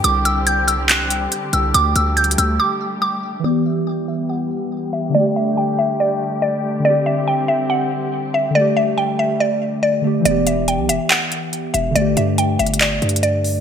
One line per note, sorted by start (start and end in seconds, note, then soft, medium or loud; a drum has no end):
0.00 3.41 D3 medium
0.00 3.40 G4 medium
0.04 1.28 C2 loud
0.04 1.73 G3 medium
0.04 1.73 C4 medium
0.04 0.23 D6 loud
0.04 closed hi-hat medium
0.25 0.44 E6 medium
0.25 closed hi-hat medium
0.47 0.65 G6 medium
0.47 closed hi-hat medium
0.68 0.86 E6 medium
0.68 closed hi-hat medium
0.89 1.49 F#6 medium
0.89 clap loud
0.89 closed hi-hat medium
1.10 closed hi-hat medium
1.32 closed hi-hat medium
1.53 1.73 C2 loud
1.53 1.72 E6 medium
1.53 closed hi-hat medium
1.74 1.95 D2 loud
1.74 3.43 G3 medium
1.74 3.43 A3 medium
1.74 1.93 D6 loud
1.74 closed hi-hat medium
1.96 2.36 D2 loud
1.96 2.14 E6 medium
1.96 closed hi-hat medium
2.17 2.35 G6 medium
2.17 closed hi-hat soft
2.24 closed hi-hat medium
2.31 closed hi-hat medium
2.38 2.59 D2 loud
2.38 2.57 E6 medium
2.38 closed hi-hat medium
2.60 3.00 D6 medium
3.02 3.20 D6 medium
3.40 5.09 E3 medium
3.44 5.13 E3 medium
3.44 8.51 G3 medium
3.44 5.11 B3 medium
3.44 5.13 B3 medium
3.44 10.22 G4 medium
3.44 3.63 D5 loud
3.50 5.14 G4 medium
3.66 3.84 E5 medium
3.87 4.06 G5 medium
4.08 4.27 E5 medium
4.29 4.90 F#5 medium
4.93 5.12 E5 medium
5.10 6.79 D3 medium
5.15 10.21 D3 medium
5.15 6.83 A3 medium
5.15 6.82 A3 medium
5.15 5.33 D5 loud
5.20 6.84 G4 medium
5.36 5.55 E5 medium
5.57 5.76 G5 medium
5.79 5.97 E5 medium
6.00 6.40 D5 medium
6.42 6.61 D5 medium
6.80 8.49 D3 medium
6.85 8.52 C4 medium
6.85 8.53 C4 medium
6.85 7.04 D5 loud
6.90 8.54 G4 medium
7.06 7.25 E5 medium
7.28 7.46 G5 medium
7.48 7.67 E5 medium
7.70 8.30 F#5 medium
8.34 8.53 E5 medium
8.50 9.99 D3 medium
8.55 10.24 G3 medium
8.55 10.24 A3 medium
8.55 10.01 A3 medium
8.55 8.74 D5 loud
8.61 10.04 G4 medium
8.77 8.95 E5 medium
8.98 9.16 G5 medium
9.19 9.38 E5 medium
9.40 9.80 D5 medium
9.83 10.01 D5 medium
10.02 10.24 D3 medium
10.02 10.25 A3 soft
10.07 10.27 G4 soft
10.20 11.90 E3 medium
10.25 10.80 E1 loud
10.25 11.92 B3 medium
10.25 10.44 D5 loud
10.25 closed hi-hat medium
10.31 11.95 G4 medium
10.47 10.65 E5 medium
10.47 closed hi-hat medium
10.68 10.87 G5 medium
10.68 closed hi-hat medium
10.79 10.91 B1 loud
10.89 10.99 E1 loud
10.89 11.08 E5 medium
10.89 closed hi-hat medium
11.10 11.70 F#5 medium
11.10 clap loud
11.10 closed hi-hat medium
11.32 closed hi-hat medium
11.53 closed hi-hat medium
11.74 11.95 E1 loud
11.74 11.93 E5 medium
11.74 closed hi-hat medium
11.91 13.60 D3 medium
11.96 12.16 G1 loud
11.96 13.60 A3 medium
11.96 12.14 D5 loud
11.96 closed hi-hat medium
12.01 13.60 G4 medium
12.17 12.58 G2 loud
12.17 12.35 E5 medium
12.17 closed hi-hat medium
12.38 12.57 G5 medium
12.38 closed hi-hat medium
12.59 13.00 G1 loud
12.59 12.78 E5 medium
12.59 closed hi-hat soft
12.67 closed hi-hat medium
12.74 closed hi-hat medium
12.81 13.21 D5 medium
12.81 clap loud
12.81 closed hi-hat medium
13.02 13.60 G2 loud
13.02 closed hi-hat soft
13.09 closed hi-hat medium
13.16 closed hi-hat medium
13.23 13.42 D5 medium
13.23 closed hi-hat medium
13.44 open hi-hat medium